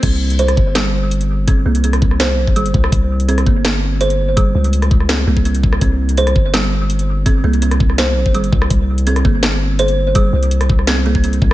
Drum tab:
CC |x---------------|----------------|----------------|----------------|
HH |x--xxx--x---xx--|x--xxx--x---xx--|x--xxx--x---xx--|x--xxx--x---xx--|
SD |-----r--o-------|-----r-ro------r|-----r--o-------|-----r-ro------r|
BD |o-----o---------|o-----o----o--o-|o-----o---------|o-----o----o--o-|

CC |----------------|----------------|----------------|----------------|
HH |x--xxx--x---xx--|x--xxx--x---xx--|x--xxx--x---xx--|x--xxx--x---xx--|
SD |-----r--o-------|-----r-ro------r|-----r--o-------|-----r-ro-------|
BD |o-----o---------|o-----o----o--o-|o-----o---------|o-----o----o--o-|